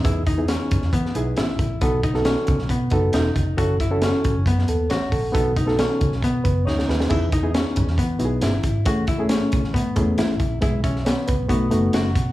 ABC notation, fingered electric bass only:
X:1
M:4/4
L:1/16
Q:1/4=136
K:E
V:1 name="Fingered electric bass" clef=bass
E,,4- E,, z F,, E,, E,2 B,,,2 A,,,2 ^A,,,2 | B,,,4- B,,, z C,, B,,, B,,2 F,,,2 E,,,2 =F,,,2 | F,,,4- F,,, z G,,, F,,, F,,2 D,,2 A,,,2 ^A,,,2 | B,,,4- B,,, z C,, B,,, B,,2 F,,,2 =D,,2 ^D,,2 |
E,,4- E,, z F,, E,, E,2 B,,,2 =G,,,2 ^G,,,2 | A,,,4- A,,, z B,,, A,,, A,,2 E,,2 A,,,2 ^A,,,2 | B,,,4- B,,, z C,, B,,, B,,,2 F,,,2 F,,,2 B,,2 |]